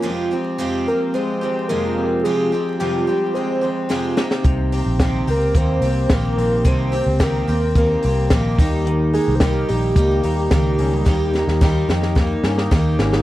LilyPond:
<<
  \new Staff \with { instrumentName = "Soft synth lead" } { \time 4/4 \key f \minor \tempo 4 = 109 r4. bes'8 c''4 bes'4 | aes'4 g'4 c''4 r4 | r4. bes'8 c''4 bes'4 | c''4 bes'4 bes'4 r4 |
r8 aes'16. c''32 bes'8 g'2~ g'8~ | g'2. r4 | }
  \new Staff \with { instrumentName = "Clean electric guitar" } { \time 4/4 \key f \minor f,8 c'4 c'8 aes8 c'8 aes8 c'8 | f,8 c'8 g'8 c'8 aes8 c'8 aes8 c8 | c8 c'8 g'8 c'8 bes8 c'8 bes8 c'8 | c8 c'8 g'8 c'8 bes8 c'8 bes8 ees8 |
ees8 ees'8 g'8 ees'8 bes8 ees'8 bes8 des'16 ees'16 | ees8 ees'8 g'8 ees'8 bes8 des'16 ees'16 bes8 des'16 ees'16 | }
  \new Staff \with { instrumentName = "Twelve-string acoustic guitar" } { \time 4/4 \key f \minor <f, c f aes c' g'>8 <f aes c' g'>8 <f, c f aes c' g'>8 <f aes c' g'>8 <f aes c' g'>8 <f aes c' g'>8 <f, c f aes c' g'>4 | <f, c f aes c' g'>8 <f aes c' g'>8 <f, c f aes c' g'>8 <f aes c' g'>8 <f aes c' g'>8 <f aes c' g'>8 <f, c f aes c' g'>8 <c ees bes c' g'>8~ | <c ees bes c' g'>8 <bes c' g'>8 <c ees bes c' g'>8 <bes c' g'>8 <ees bes c' g'>8 <bes c' g'>8 <c ees bes c' g'>4 | <c ees bes c' g'>8 <bes c' g'>8 <c ees bes c' g'>8 <bes c' g'>8 <ees bes c' g'>8 <bes c' g'>8 <c ees bes c' g'>8 <ees g bes ees' g'>8~ |
<ees g bes ees' g'>8 <bes ees' g'>8 <ees g bes ees' g'>8 <bes ees' g'>8 <g bes ees' g'>8 <bes ees' g'>8 <ees g bes ees' g'>4 | <ees g bes ees' g'>8 <bes ees' g'>8 <ees g bes ees' g'>8 <bes ees' g'>8 <g bes ees' g'>8 <bes ees' g'>8 <ees g bes ees' g'>4 | }
  \new Staff \with { instrumentName = "Picked electric bass" } { \clef bass \time 4/4 \key f \minor r1 | r1 | c,8. bes,,8. des,8 ees,8 c,8 bes,,8 bes,,8 | c,8. des,8. ees,4 c,8 bes,,8 ees,8~ |
ees,8. c,8. bes,,8 des,8 ees,8 des,8 des,8 | ees,8. ees,8. f,4 g,8 ees,8 aes,,8 | }
  \new DrumStaff \with { instrumentName = "Drums" } \drummode { \time 4/4 r4 r4 r4 r4 | r4 r4 r4 sn8 sn16 sn16 | <hh bd>8 hho8 <hh bd sn>8 hho8 <hh bd>8 hho8 <hh bd sn>8 hho8 | <hh bd>8 hho8 <hh bd sn>8 hho8 <hh bd>8 hho8 <hh bd sn>8 <hho bd>8 |
hh8 hho8 <hh bd sn>8 hho8 <hh bd>8 hho8 <hh bd sn>8 hho8 | <bd sn>8 sn16 sn16 <bd sn>8 sn16 sn16 <bd sn>8 sn16 sn16 <bd sn>8 sn16 sn16 | }
>>